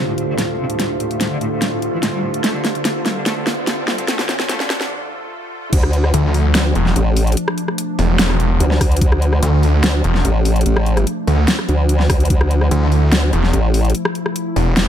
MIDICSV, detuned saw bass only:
0, 0, Header, 1, 2, 480
1, 0, Start_track
1, 0, Key_signature, -1, "minor"
1, 0, Tempo, 410959
1, 929, Time_signature, 4, 2, 24, 8
1, 17380, End_track
2, 0, Start_track
2, 0, Title_t, "Detuned saw bass"
2, 0, Program_c, 0, 39
2, 7169, Note_on_c, 0, 38, 100
2, 7630, Note_off_c, 0, 38, 0
2, 7889, Note_on_c, 0, 28, 98
2, 8111, Note_off_c, 0, 28, 0
2, 9329, Note_on_c, 0, 28, 105
2, 9791, Note_off_c, 0, 28, 0
2, 9809, Note_on_c, 0, 28, 99
2, 10031, Note_off_c, 0, 28, 0
2, 11009, Note_on_c, 0, 38, 97
2, 11471, Note_off_c, 0, 38, 0
2, 11729, Note_on_c, 0, 28, 95
2, 11951, Note_off_c, 0, 28, 0
2, 13169, Note_on_c, 0, 38, 101
2, 13391, Note_off_c, 0, 38, 0
2, 14849, Note_on_c, 0, 38, 98
2, 15310, Note_off_c, 0, 38, 0
2, 15569, Note_on_c, 0, 28, 96
2, 15791, Note_off_c, 0, 28, 0
2, 17009, Note_on_c, 0, 28, 101
2, 17380, Note_off_c, 0, 28, 0
2, 17380, End_track
0, 0, End_of_file